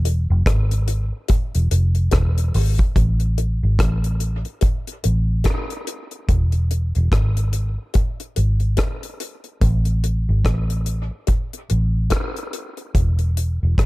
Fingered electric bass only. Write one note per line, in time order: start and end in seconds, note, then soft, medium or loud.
0.00 0.27 E1 loud
0.30 0.46 F1 medium
0.47 1.10 G#1 medium
1.55 1.71 E1 medium
1.72 2.11 F1 medium
2.13 2.53 E1 medium
2.55 2.78 G#1 loud
2.96 3.60 A1 loud
3.63 3.79 G#1 medium
3.80 4.43 A1 medium
5.05 5.44 A1 medium
6.29 6.92 E1 loud
6.96 7.12 E1 medium
7.12 7.76 G#1 medium
8.37 8.77 G#1 medium
9.62 10.26 A1 loud
10.29 10.44 G#1 medium
10.45 11.09 A1 medium
11.71 12.10 A1 medium
12.95 13.59 E1 medium
13.63 13.78 E1 medium
13.78 13.86 G#1 medium